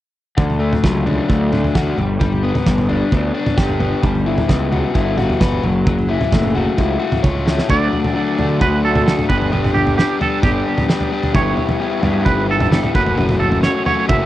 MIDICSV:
0, 0, Header, 1, 5, 480
1, 0, Start_track
1, 0, Key_signature, 2, "major"
1, 0, Tempo, 457317
1, 394, Time_signature, 4, 2, 24, 8
1, 14964, End_track
2, 0, Start_track
2, 0, Title_t, "Clean electric guitar"
2, 0, Program_c, 0, 27
2, 8085, Note_on_c, 0, 74, 95
2, 8995, Note_off_c, 0, 74, 0
2, 9043, Note_on_c, 0, 71, 83
2, 9283, Note_off_c, 0, 71, 0
2, 9287, Note_on_c, 0, 69, 88
2, 9744, Note_off_c, 0, 69, 0
2, 9748, Note_on_c, 0, 71, 71
2, 10220, Note_off_c, 0, 71, 0
2, 10225, Note_on_c, 0, 67, 78
2, 10450, Note_off_c, 0, 67, 0
2, 10472, Note_on_c, 0, 67, 76
2, 10694, Note_off_c, 0, 67, 0
2, 10725, Note_on_c, 0, 69, 74
2, 10940, Note_off_c, 0, 69, 0
2, 10949, Note_on_c, 0, 67, 65
2, 11626, Note_off_c, 0, 67, 0
2, 11918, Note_on_c, 0, 73, 70
2, 12858, Note_off_c, 0, 73, 0
2, 12862, Note_on_c, 0, 71, 80
2, 13089, Note_off_c, 0, 71, 0
2, 13128, Note_on_c, 0, 69, 80
2, 13592, Note_off_c, 0, 69, 0
2, 13597, Note_on_c, 0, 71, 77
2, 14058, Note_off_c, 0, 71, 0
2, 14062, Note_on_c, 0, 69, 76
2, 14290, Note_off_c, 0, 69, 0
2, 14308, Note_on_c, 0, 73, 80
2, 14537, Note_off_c, 0, 73, 0
2, 14549, Note_on_c, 0, 73, 87
2, 14782, Note_off_c, 0, 73, 0
2, 14786, Note_on_c, 0, 76, 90
2, 14964, Note_off_c, 0, 76, 0
2, 14964, End_track
3, 0, Start_track
3, 0, Title_t, "Overdriven electric guitar"
3, 0, Program_c, 1, 29
3, 387, Note_on_c, 1, 50, 53
3, 624, Note_on_c, 1, 57, 53
3, 873, Note_on_c, 1, 54, 65
3, 1113, Note_on_c, 1, 62, 56
3, 1337, Note_off_c, 1, 57, 0
3, 1349, Note_on_c, 1, 57, 57
3, 1583, Note_off_c, 1, 62, 0
3, 1591, Note_off_c, 1, 50, 0
3, 1596, Note_on_c, 1, 62, 61
3, 1838, Note_on_c, 1, 66, 76
3, 2070, Note_off_c, 1, 54, 0
3, 2072, Note_off_c, 1, 57, 0
3, 2074, Note_on_c, 1, 55, 54
3, 2075, Note_off_c, 1, 62, 0
3, 2076, Note_off_c, 1, 66, 0
3, 2297, Note_off_c, 1, 55, 0
3, 2310, Note_on_c, 1, 55, 58
3, 2552, Note_on_c, 1, 59, 63
3, 2781, Note_off_c, 1, 55, 0
3, 2794, Note_on_c, 1, 55, 62
3, 3031, Note_on_c, 1, 62, 62
3, 3255, Note_off_c, 1, 59, 0
3, 3268, Note_on_c, 1, 59, 62
3, 3494, Note_off_c, 1, 62, 0
3, 3507, Note_on_c, 1, 62, 63
3, 3749, Note_on_c, 1, 67, 79
3, 3975, Note_off_c, 1, 59, 0
3, 3987, Note_on_c, 1, 59, 62
3, 3995, Note_off_c, 1, 55, 0
3, 4225, Note_on_c, 1, 55, 65
3, 4231, Note_off_c, 1, 59, 0
3, 4231, Note_off_c, 1, 62, 0
3, 4233, Note_off_c, 1, 67, 0
3, 4472, Note_on_c, 1, 64, 57
3, 4706, Note_on_c, 1, 59, 64
3, 4951, Note_on_c, 1, 66, 58
3, 5173, Note_off_c, 1, 64, 0
3, 5186, Note_on_c, 1, 64, 58
3, 5429, Note_off_c, 1, 66, 0
3, 5430, Note_off_c, 1, 55, 0
3, 5433, Note_on_c, 1, 66, 67
3, 5671, Note_on_c, 1, 71, 74
3, 5909, Note_on_c, 1, 54, 64
3, 5910, Note_off_c, 1, 59, 0
3, 5910, Note_off_c, 1, 64, 0
3, 5913, Note_off_c, 1, 71, 0
3, 6148, Note_off_c, 1, 54, 0
3, 6160, Note_on_c, 1, 54, 66
3, 6389, Note_on_c, 1, 64, 60
3, 6421, Note_off_c, 1, 66, 0
3, 6633, Note_on_c, 1, 57, 64
3, 6877, Note_on_c, 1, 66, 62
3, 7098, Note_off_c, 1, 64, 0
3, 7111, Note_on_c, 1, 64, 63
3, 7329, Note_off_c, 1, 66, 0
3, 7342, Note_on_c, 1, 66, 64
3, 7356, Note_off_c, 1, 54, 0
3, 7587, Note_on_c, 1, 73, 75
3, 7811, Note_off_c, 1, 64, 0
3, 7824, Note_on_c, 1, 64, 61
3, 7832, Note_off_c, 1, 57, 0
3, 8061, Note_on_c, 1, 50, 73
3, 8066, Note_off_c, 1, 66, 0
3, 8068, Note_off_c, 1, 64, 0
3, 8068, Note_on_c, 1, 54, 68
3, 8069, Note_off_c, 1, 73, 0
3, 8075, Note_on_c, 1, 57, 84
3, 8080, Note_on_c, 1, 62, 93
3, 8081, Note_on_c, 1, 66, 84
3, 8530, Note_off_c, 1, 50, 0
3, 8538, Note_off_c, 1, 54, 0
3, 8543, Note_on_c, 1, 50, 68
3, 8544, Note_off_c, 1, 57, 0
3, 8550, Note_on_c, 1, 54, 70
3, 8556, Note_off_c, 1, 66, 0
3, 8557, Note_off_c, 1, 62, 0
3, 8557, Note_on_c, 1, 57, 71
3, 8561, Note_on_c, 1, 62, 75
3, 8569, Note_on_c, 1, 66, 73
3, 8777, Note_off_c, 1, 50, 0
3, 8782, Note_off_c, 1, 54, 0
3, 8788, Note_off_c, 1, 57, 0
3, 8789, Note_on_c, 1, 50, 71
3, 8794, Note_on_c, 1, 54, 77
3, 8795, Note_off_c, 1, 66, 0
3, 8800, Note_off_c, 1, 62, 0
3, 8800, Note_on_c, 1, 57, 80
3, 8805, Note_on_c, 1, 62, 73
3, 8808, Note_on_c, 1, 66, 79
3, 9014, Note_off_c, 1, 50, 0
3, 9022, Note_off_c, 1, 54, 0
3, 9026, Note_off_c, 1, 57, 0
3, 9027, Note_on_c, 1, 50, 74
3, 9031, Note_off_c, 1, 62, 0
3, 9035, Note_on_c, 1, 54, 68
3, 9037, Note_off_c, 1, 66, 0
3, 9038, Note_on_c, 1, 57, 85
3, 9043, Note_on_c, 1, 62, 89
3, 9049, Note_on_c, 1, 66, 92
3, 9495, Note_off_c, 1, 50, 0
3, 9497, Note_off_c, 1, 54, 0
3, 9504, Note_off_c, 1, 57, 0
3, 9507, Note_on_c, 1, 50, 71
3, 9509, Note_on_c, 1, 54, 78
3, 9511, Note_off_c, 1, 62, 0
3, 9517, Note_off_c, 1, 66, 0
3, 9517, Note_on_c, 1, 57, 88
3, 9523, Note_on_c, 1, 62, 88
3, 9529, Note_on_c, 1, 66, 95
3, 9734, Note_off_c, 1, 50, 0
3, 9735, Note_off_c, 1, 54, 0
3, 9739, Note_off_c, 1, 57, 0
3, 9742, Note_off_c, 1, 62, 0
3, 9745, Note_off_c, 1, 66, 0
3, 9747, Note_on_c, 1, 55, 69
3, 9753, Note_on_c, 1, 59, 87
3, 9755, Note_on_c, 1, 62, 90
3, 9763, Note_on_c, 1, 67, 82
3, 9977, Note_off_c, 1, 55, 0
3, 9981, Note_off_c, 1, 62, 0
3, 9981, Note_on_c, 1, 55, 69
3, 9986, Note_off_c, 1, 59, 0
3, 9990, Note_on_c, 1, 59, 73
3, 9993, Note_off_c, 1, 67, 0
3, 9993, Note_on_c, 1, 62, 74
3, 9997, Note_on_c, 1, 67, 94
3, 10465, Note_off_c, 1, 55, 0
3, 10467, Note_off_c, 1, 62, 0
3, 10469, Note_on_c, 1, 55, 82
3, 10474, Note_off_c, 1, 59, 0
3, 10478, Note_on_c, 1, 59, 74
3, 10480, Note_on_c, 1, 62, 83
3, 10484, Note_off_c, 1, 67, 0
3, 10488, Note_on_c, 1, 67, 87
3, 10689, Note_off_c, 1, 55, 0
3, 10697, Note_off_c, 1, 59, 0
3, 10701, Note_off_c, 1, 62, 0
3, 10702, Note_on_c, 1, 55, 69
3, 10708, Note_off_c, 1, 67, 0
3, 10710, Note_on_c, 1, 59, 72
3, 10713, Note_on_c, 1, 62, 82
3, 10720, Note_on_c, 1, 67, 87
3, 10935, Note_off_c, 1, 55, 0
3, 10941, Note_off_c, 1, 59, 0
3, 10947, Note_on_c, 1, 55, 82
3, 10949, Note_off_c, 1, 62, 0
3, 10953, Note_on_c, 1, 59, 76
3, 10957, Note_off_c, 1, 67, 0
3, 10961, Note_on_c, 1, 62, 88
3, 10970, Note_on_c, 1, 67, 90
3, 11410, Note_off_c, 1, 55, 0
3, 11415, Note_off_c, 1, 59, 0
3, 11423, Note_off_c, 1, 62, 0
3, 11423, Note_on_c, 1, 55, 84
3, 11426, Note_off_c, 1, 67, 0
3, 11428, Note_on_c, 1, 59, 88
3, 11436, Note_on_c, 1, 62, 91
3, 11438, Note_on_c, 1, 67, 101
3, 11648, Note_off_c, 1, 55, 0
3, 11659, Note_off_c, 1, 59, 0
3, 11660, Note_on_c, 1, 55, 80
3, 11661, Note_off_c, 1, 62, 0
3, 11669, Note_off_c, 1, 67, 0
3, 11672, Note_on_c, 1, 59, 73
3, 11674, Note_on_c, 1, 62, 80
3, 11682, Note_on_c, 1, 67, 92
3, 11884, Note_off_c, 1, 55, 0
3, 11891, Note_off_c, 1, 59, 0
3, 11897, Note_off_c, 1, 62, 0
3, 11897, Note_on_c, 1, 55, 73
3, 11901, Note_off_c, 1, 67, 0
3, 11903, Note_on_c, 1, 59, 74
3, 11908, Note_on_c, 1, 64, 93
3, 11916, Note_on_c, 1, 67, 85
3, 12367, Note_off_c, 1, 55, 0
3, 12374, Note_off_c, 1, 59, 0
3, 12380, Note_on_c, 1, 55, 85
3, 12386, Note_off_c, 1, 67, 0
3, 12386, Note_on_c, 1, 59, 73
3, 12392, Note_off_c, 1, 64, 0
3, 12396, Note_on_c, 1, 64, 82
3, 12399, Note_on_c, 1, 67, 75
3, 12607, Note_off_c, 1, 55, 0
3, 12613, Note_off_c, 1, 59, 0
3, 12619, Note_on_c, 1, 55, 68
3, 12624, Note_off_c, 1, 67, 0
3, 12625, Note_on_c, 1, 59, 72
3, 12627, Note_off_c, 1, 64, 0
3, 12631, Note_on_c, 1, 64, 82
3, 12636, Note_on_c, 1, 67, 79
3, 12842, Note_off_c, 1, 55, 0
3, 12847, Note_off_c, 1, 59, 0
3, 12854, Note_off_c, 1, 64, 0
3, 12854, Note_on_c, 1, 55, 88
3, 12858, Note_off_c, 1, 67, 0
3, 12860, Note_on_c, 1, 59, 91
3, 12867, Note_on_c, 1, 64, 82
3, 12870, Note_on_c, 1, 67, 87
3, 13333, Note_off_c, 1, 55, 0
3, 13339, Note_off_c, 1, 59, 0
3, 13342, Note_off_c, 1, 64, 0
3, 13345, Note_on_c, 1, 55, 79
3, 13348, Note_off_c, 1, 67, 0
3, 13352, Note_on_c, 1, 59, 80
3, 13354, Note_on_c, 1, 64, 78
3, 13360, Note_on_c, 1, 67, 83
3, 13574, Note_off_c, 1, 55, 0
3, 13577, Note_off_c, 1, 59, 0
3, 13578, Note_off_c, 1, 64, 0
3, 13581, Note_off_c, 1, 67, 0
3, 13584, Note_on_c, 1, 54, 83
3, 13591, Note_on_c, 1, 57, 85
3, 13595, Note_on_c, 1, 61, 94
3, 13601, Note_on_c, 1, 66, 89
3, 13814, Note_off_c, 1, 54, 0
3, 13818, Note_on_c, 1, 54, 80
3, 13820, Note_off_c, 1, 57, 0
3, 13820, Note_off_c, 1, 61, 0
3, 13824, Note_on_c, 1, 57, 81
3, 13831, Note_off_c, 1, 66, 0
3, 13832, Note_on_c, 1, 61, 92
3, 13835, Note_on_c, 1, 66, 89
3, 14300, Note_off_c, 1, 54, 0
3, 14304, Note_off_c, 1, 57, 0
3, 14304, Note_on_c, 1, 54, 65
3, 14305, Note_off_c, 1, 61, 0
3, 14308, Note_on_c, 1, 57, 77
3, 14318, Note_on_c, 1, 61, 87
3, 14320, Note_off_c, 1, 66, 0
3, 14324, Note_on_c, 1, 66, 82
3, 14531, Note_off_c, 1, 54, 0
3, 14538, Note_off_c, 1, 57, 0
3, 14541, Note_off_c, 1, 61, 0
3, 14543, Note_on_c, 1, 54, 72
3, 14546, Note_off_c, 1, 66, 0
3, 14551, Note_on_c, 1, 57, 77
3, 14554, Note_on_c, 1, 61, 79
3, 14559, Note_on_c, 1, 66, 83
3, 14770, Note_off_c, 1, 54, 0
3, 14776, Note_off_c, 1, 57, 0
3, 14780, Note_off_c, 1, 61, 0
3, 14782, Note_on_c, 1, 54, 81
3, 14787, Note_off_c, 1, 66, 0
3, 14788, Note_on_c, 1, 57, 73
3, 14793, Note_on_c, 1, 61, 90
3, 14800, Note_on_c, 1, 66, 94
3, 14964, Note_off_c, 1, 54, 0
3, 14964, Note_off_c, 1, 57, 0
3, 14964, Note_off_c, 1, 61, 0
3, 14964, Note_off_c, 1, 66, 0
3, 14964, End_track
4, 0, Start_track
4, 0, Title_t, "Picked electric bass"
4, 0, Program_c, 2, 34
4, 396, Note_on_c, 2, 38, 74
4, 765, Note_off_c, 2, 38, 0
4, 878, Note_on_c, 2, 37, 84
4, 1246, Note_off_c, 2, 37, 0
4, 1359, Note_on_c, 2, 38, 75
4, 1726, Note_off_c, 2, 38, 0
4, 1840, Note_on_c, 2, 38, 69
4, 2023, Note_off_c, 2, 38, 0
4, 2076, Note_on_c, 2, 31, 81
4, 2629, Note_off_c, 2, 31, 0
4, 2796, Note_on_c, 2, 31, 76
4, 3165, Note_off_c, 2, 31, 0
4, 3276, Note_on_c, 2, 38, 78
4, 3460, Note_off_c, 2, 38, 0
4, 3753, Note_on_c, 2, 31, 79
4, 4123, Note_off_c, 2, 31, 0
4, 4236, Note_on_c, 2, 31, 94
4, 4605, Note_off_c, 2, 31, 0
4, 4716, Note_on_c, 2, 37, 88
4, 5085, Note_off_c, 2, 37, 0
4, 5197, Note_on_c, 2, 31, 84
4, 5565, Note_off_c, 2, 31, 0
4, 5679, Note_on_c, 2, 31, 86
4, 5862, Note_off_c, 2, 31, 0
4, 5921, Note_on_c, 2, 30, 84
4, 6472, Note_off_c, 2, 30, 0
4, 6637, Note_on_c, 2, 30, 92
4, 7005, Note_off_c, 2, 30, 0
4, 7121, Note_on_c, 2, 37, 90
4, 7302, Note_off_c, 2, 37, 0
4, 7597, Note_on_c, 2, 37, 84
4, 7964, Note_off_c, 2, 37, 0
4, 8080, Note_on_c, 2, 38, 85
4, 8262, Note_off_c, 2, 38, 0
4, 8804, Note_on_c, 2, 50, 78
4, 9041, Note_on_c, 2, 38, 82
4, 9057, Note_off_c, 2, 50, 0
4, 9590, Note_off_c, 2, 38, 0
4, 9759, Note_on_c, 2, 31, 72
4, 10493, Note_off_c, 2, 31, 0
4, 10947, Note_on_c, 2, 31, 84
4, 11132, Note_off_c, 2, 31, 0
4, 11911, Note_on_c, 2, 31, 81
4, 12095, Note_off_c, 2, 31, 0
4, 12626, Note_on_c, 2, 43, 82
4, 12868, Note_on_c, 2, 31, 85
4, 12884, Note_off_c, 2, 43, 0
4, 13423, Note_off_c, 2, 31, 0
4, 13592, Note_on_c, 2, 30, 78
4, 14331, Note_off_c, 2, 30, 0
4, 14792, Note_on_c, 2, 30, 92
4, 14964, Note_off_c, 2, 30, 0
4, 14964, End_track
5, 0, Start_track
5, 0, Title_t, "Drums"
5, 397, Note_on_c, 9, 36, 104
5, 398, Note_on_c, 9, 43, 84
5, 501, Note_off_c, 9, 36, 0
5, 503, Note_off_c, 9, 43, 0
5, 524, Note_on_c, 9, 43, 71
5, 629, Note_off_c, 9, 43, 0
5, 763, Note_on_c, 9, 43, 70
5, 763, Note_on_c, 9, 47, 64
5, 868, Note_off_c, 9, 43, 0
5, 868, Note_off_c, 9, 47, 0
5, 879, Note_on_c, 9, 36, 99
5, 886, Note_on_c, 9, 38, 67
5, 984, Note_off_c, 9, 36, 0
5, 991, Note_off_c, 9, 38, 0
5, 1125, Note_on_c, 9, 43, 69
5, 1230, Note_off_c, 9, 43, 0
5, 1361, Note_on_c, 9, 36, 80
5, 1466, Note_off_c, 9, 36, 0
5, 1603, Note_on_c, 9, 47, 71
5, 1708, Note_off_c, 9, 47, 0
5, 1725, Note_on_c, 9, 43, 66
5, 1830, Note_off_c, 9, 43, 0
5, 1840, Note_on_c, 9, 36, 102
5, 1842, Note_on_c, 9, 43, 70
5, 1846, Note_on_c, 9, 38, 81
5, 1945, Note_off_c, 9, 36, 0
5, 1947, Note_off_c, 9, 43, 0
5, 1951, Note_off_c, 9, 38, 0
5, 1959, Note_on_c, 9, 43, 64
5, 2064, Note_off_c, 9, 43, 0
5, 2083, Note_on_c, 9, 43, 78
5, 2188, Note_off_c, 9, 43, 0
5, 2320, Note_on_c, 9, 36, 101
5, 2321, Note_on_c, 9, 43, 75
5, 2425, Note_off_c, 9, 36, 0
5, 2426, Note_off_c, 9, 43, 0
5, 2440, Note_on_c, 9, 43, 61
5, 2545, Note_off_c, 9, 43, 0
5, 2678, Note_on_c, 9, 43, 75
5, 2678, Note_on_c, 9, 47, 73
5, 2783, Note_off_c, 9, 43, 0
5, 2783, Note_off_c, 9, 47, 0
5, 2793, Note_on_c, 9, 43, 66
5, 2797, Note_on_c, 9, 38, 68
5, 2798, Note_on_c, 9, 36, 88
5, 2898, Note_off_c, 9, 43, 0
5, 2902, Note_off_c, 9, 38, 0
5, 2903, Note_off_c, 9, 36, 0
5, 2920, Note_on_c, 9, 47, 78
5, 3025, Note_off_c, 9, 47, 0
5, 3039, Note_on_c, 9, 43, 70
5, 3144, Note_off_c, 9, 43, 0
5, 3277, Note_on_c, 9, 36, 85
5, 3381, Note_off_c, 9, 36, 0
5, 3636, Note_on_c, 9, 43, 72
5, 3636, Note_on_c, 9, 47, 66
5, 3741, Note_off_c, 9, 43, 0
5, 3741, Note_off_c, 9, 47, 0
5, 3754, Note_on_c, 9, 36, 102
5, 3757, Note_on_c, 9, 38, 75
5, 3859, Note_off_c, 9, 36, 0
5, 3862, Note_off_c, 9, 38, 0
5, 3870, Note_on_c, 9, 43, 63
5, 3975, Note_off_c, 9, 43, 0
5, 3992, Note_on_c, 9, 43, 78
5, 4097, Note_off_c, 9, 43, 0
5, 4234, Note_on_c, 9, 36, 96
5, 4234, Note_on_c, 9, 43, 79
5, 4339, Note_off_c, 9, 36, 0
5, 4339, Note_off_c, 9, 43, 0
5, 4359, Note_on_c, 9, 43, 67
5, 4464, Note_off_c, 9, 43, 0
5, 4596, Note_on_c, 9, 43, 78
5, 4596, Note_on_c, 9, 47, 67
5, 4701, Note_off_c, 9, 43, 0
5, 4701, Note_off_c, 9, 47, 0
5, 4716, Note_on_c, 9, 36, 96
5, 4718, Note_on_c, 9, 38, 67
5, 4821, Note_off_c, 9, 36, 0
5, 4823, Note_off_c, 9, 38, 0
5, 4959, Note_on_c, 9, 43, 74
5, 5064, Note_off_c, 9, 43, 0
5, 5197, Note_on_c, 9, 36, 95
5, 5302, Note_off_c, 9, 36, 0
5, 5434, Note_on_c, 9, 47, 73
5, 5539, Note_off_c, 9, 47, 0
5, 5558, Note_on_c, 9, 43, 68
5, 5663, Note_off_c, 9, 43, 0
5, 5676, Note_on_c, 9, 43, 81
5, 5677, Note_on_c, 9, 36, 103
5, 5681, Note_on_c, 9, 38, 74
5, 5781, Note_off_c, 9, 43, 0
5, 5782, Note_off_c, 9, 36, 0
5, 5786, Note_off_c, 9, 38, 0
5, 5796, Note_on_c, 9, 43, 68
5, 5901, Note_off_c, 9, 43, 0
5, 5915, Note_on_c, 9, 43, 72
5, 6020, Note_off_c, 9, 43, 0
5, 6159, Note_on_c, 9, 36, 106
5, 6159, Note_on_c, 9, 43, 78
5, 6264, Note_off_c, 9, 36, 0
5, 6264, Note_off_c, 9, 43, 0
5, 6283, Note_on_c, 9, 43, 77
5, 6388, Note_off_c, 9, 43, 0
5, 6516, Note_on_c, 9, 43, 74
5, 6516, Note_on_c, 9, 47, 70
5, 6621, Note_off_c, 9, 43, 0
5, 6621, Note_off_c, 9, 47, 0
5, 6637, Note_on_c, 9, 43, 73
5, 6638, Note_on_c, 9, 36, 94
5, 6641, Note_on_c, 9, 38, 75
5, 6742, Note_off_c, 9, 43, 0
5, 6743, Note_off_c, 9, 36, 0
5, 6746, Note_off_c, 9, 38, 0
5, 6753, Note_on_c, 9, 47, 77
5, 6858, Note_off_c, 9, 47, 0
5, 6874, Note_on_c, 9, 43, 73
5, 6979, Note_off_c, 9, 43, 0
5, 7119, Note_on_c, 9, 36, 90
5, 7224, Note_off_c, 9, 36, 0
5, 7473, Note_on_c, 9, 43, 80
5, 7473, Note_on_c, 9, 47, 68
5, 7578, Note_off_c, 9, 43, 0
5, 7578, Note_off_c, 9, 47, 0
5, 7599, Note_on_c, 9, 36, 103
5, 7599, Note_on_c, 9, 48, 60
5, 7704, Note_off_c, 9, 36, 0
5, 7704, Note_off_c, 9, 48, 0
5, 7719, Note_on_c, 9, 47, 49
5, 7824, Note_off_c, 9, 47, 0
5, 7845, Note_on_c, 9, 38, 75
5, 7950, Note_off_c, 9, 38, 0
5, 7961, Note_on_c, 9, 38, 68
5, 8066, Note_off_c, 9, 38, 0
5, 8072, Note_on_c, 9, 43, 84
5, 8079, Note_on_c, 9, 36, 105
5, 8177, Note_off_c, 9, 43, 0
5, 8184, Note_off_c, 9, 36, 0
5, 8321, Note_on_c, 9, 43, 70
5, 8426, Note_off_c, 9, 43, 0
5, 8444, Note_on_c, 9, 43, 74
5, 8549, Note_off_c, 9, 43, 0
5, 8801, Note_on_c, 9, 43, 74
5, 8906, Note_off_c, 9, 43, 0
5, 9039, Note_on_c, 9, 36, 103
5, 9044, Note_on_c, 9, 43, 77
5, 9144, Note_off_c, 9, 36, 0
5, 9149, Note_off_c, 9, 43, 0
5, 9399, Note_on_c, 9, 43, 76
5, 9399, Note_on_c, 9, 47, 69
5, 9503, Note_off_c, 9, 43, 0
5, 9503, Note_off_c, 9, 47, 0
5, 9527, Note_on_c, 9, 38, 78
5, 9632, Note_off_c, 9, 38, 0
5, 9643, Note_on_c, 9, 43, 68
5, 9643, Note_on_c, 9, 47, 62
5, 9748, Note_off_c, 9, 43, 0
5, 9748, Note_off_c, 9, 47, 0
5, 9758, Note_on_c, 9, 36, 92
5, 9863, Note_off_c, 9, 36, 0
5, 9883, Note_on_c, 9, 43, 71
5, 9988, Note_off_c, 9, 43, 0
5, 10004, Note_on_c, 9, 43, 78
5, 10109, Note_off_c, 9, 43, 0
5, 10122, Note_on_c, 9, 43, 66
5, 10122, Note_on_c, 9, 47, 70
5, 10227, Note_off_c, 9, 43, 0
5, 10227, Note_off_c, 9, 47, 0
5, 10238, Note_on_c, 9, 43, 64
5, 10343, Note_off_c, 9, 43, 0
5, 10356, Note_on_c, 9, 43, 79
5, 10461, Note_off_c, 9, 43, 0
5, 10485, Note_on_c, 9, 38, 72
5, 10590, Note_off_c, 9, 38, 0
5, 10717, Note_on_c, 9, 43, 78
5, 10822, Note_off_c, 9, 43, 0
5, 10950, Note_on_c, 9, 36, 93
5, 10953, Note_on_c, 9, 43, 68
5, 10953, Note_on_c, 9, 47, 63
5, 11055, Note_off_c, 9, 36, 0
5, 11058, Note_off_c, 9, 43, 0
5, 11058, Note_off_c, 9, 47, 0
5, 11312, Note_on_c, 9, 43, 81
5, 11312, Note_on_c, 9, 47, 64
5, 11417, Note_off_c, 9, 43, 0
5, 11417, Note_off_c, 9, 47, 0
5, 11436, Note_on_c, 9, 38, 73
5, 11541, Note_off_c, 9, 38, 0
5, 11549, Note_on_c, 9, 43, 73
5, 11654, Note_off_c, 9, 43, 0
5, 11790, Note_on_c, 9, 43, 72
5, 11895, Note_off_c, 9, 43, 0
5, 11908, Note_on_c, 9, 43, 81
5, 11909, Note_on_c, 9, 36, 100
5, 12013, Note_off_c, 9, 43, 0
5, 12014, Note_off_c, 9, 36, 0
5, 12146, Note_on_c, 9, 43, 65
5, 12251, Note_off_c, 9, 43, 0
5, 12266, Note_on_c, 9, 43, 77
5, 12371, Note_off_c, 9, 43, 0
5, 12626, Note_on_c, 9, 43, 82
5, 12731, Note_off_c, 9, 43, 0
5, 12868, Note_on_c, 9, 43, 68
5, 12869, Note_on_c, 9, 36, 91
5, 12973, Note_off_c, 9, 43, 0
5, 12974, Note_off_c, 9, 36, 0
5, 13228, Note_on_c, 9, 43, 85
5, 13228, Note_on_c, 9, 47, 68
5, 13333, Note_off_c, 9, 43, 0
5, 13333, Note_off_c, 9, 47, 0
5, 13354, Note_on_c, 9, 38, 79
5, 13459, Note_off_c, 9, 38, 0
5, 13472, Note_on_c, 9, 43, 63
5, 13472, Note_on_c, 9, 47, 72
5, 13577, Note_off_c, 9, 43, 0
5, 13577, Note_off_c, 9, 47, 0
5, 13591, Note_on_c, 9, 36, 99
5, 13696, Note_off_c, 9, 36, 0
5, 13713, Note_on_c, 9, 43, 78
5, 13817, Note_off_c, 9, 43, 0
5, 13830, Note_on_c, 9, 43, 80
5, 13935, Note_off_c, 9, 43, 0
5, 13948, Note_on_c, 9, 43, 72
5, 13948, Note_on_c, 9, 47, 76
5, 14053, Note_off_c, 9, 43, 0
5, 14053, Note_off_c, 9, 47, 0
5, 14067, Note_on_c, 9, 43, 61
5, 14172, Note_off_c, 9, 43, 0
5, 14188, Note_on_c, 9, 43, 74
5, 14293, Note_off_c, 9, 43, 0
5, 14306, Note_on_c, 9, 38, 63
5, 14411, Note_off_c, 9, 38, 0
5, 14548, Note_on_c, 9, 43, 72
5, 14653, Note_off_c, 9, 43, 0
5, 14790, Note_on_c, 9, 43, 75
5, 14790, Note_on_c, 9, 47, 64
5, 14793, Note_on_c, 9, 36, 102
5, 14895, Note_off_c, 9, 43, 0
5, 14895, Note_off_c, 9, 47, 0
5, 14898, Note_off_c, 9, 36, 0
5, 14964, End_track
0, 0, End_of_file